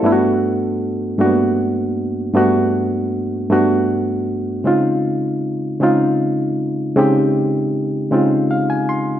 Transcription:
<<
  \new Staff \with { instrumentName = "Reed electric piano" } { \time 6/8 \key g \dorian \tempo 4. = 52 a'16 r2 r8. | r2. | r2. | r2 f''16 aes''16 c'''8 | }
  \new Staff \with { instrumentName = "Reed electric piano" } { \time 6/8 \key g \dorian <g, a b d' e' fis'>4 r8 <g, a bes b d' fis'>4 r8 | <g, a b d' fis'>4 r8 <g, a b d' fis'>4 r8 | <des aes c' ees' f'>4 r8 <des aes c' ees' f'>4 r8 | <des aes c' ees' g'>4 r8 <des aes c' ees' f'>4 r8 | }
>>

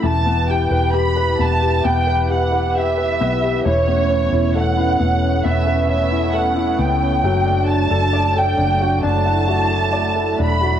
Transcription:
<<
  \new Staff \with { instrumentName = "Violin section" } { \time 4/4 \key a \mixolydian \tempo 4 = 67 a''8 g''8 b''8 a''8 g''8 fis''8 e''4 | cis''4 fis''4 e''8 e''8 fis''8 g''8~ | g''8 a''8. g''8. a''4. b''8 | }
  \new Staff \with { instrumentName = "Grand piano" } { \time 4/4 \key a \mixolydian e16 b16 g'16 b'16 g'16 b'16 b16 g'16 b16 b'16 g'16 b'16 g'16 b'16 b16 g'16 | e16 b16 cis'16 e'16 a'16 e'16 b16 cis'16 b16 b'16 cis'16 e'16 a'16 e'16 b16 cis'16 | fis16 d'8 a'16 d''16 a'16 d'16 fis'16 d'16 fis''16 fis'16 a'16 d''16 a'16 d'16 fis'16 | }
  \new Staff \with { instrumentName = "Analog synth pad" } { \time 4/4 \key a \mixolydian << { <e g' b'>1 | <b cis'>1 | d'2 e'2 | } \\ { e'1 | a1 | fis1 | } >> }
  \new Staff \with { instrumentName = "Fingered electric bass" } { \clef bass \time 4/4 \key a \mixolydian e,,8. e,,8. e,,8 e,,4. b,,8 | e,,8. e,,8. e,,8 e,,4. cis,8 | fis,,8. fis,,8. fis,,8 fis,,4. e,,8 | }
>>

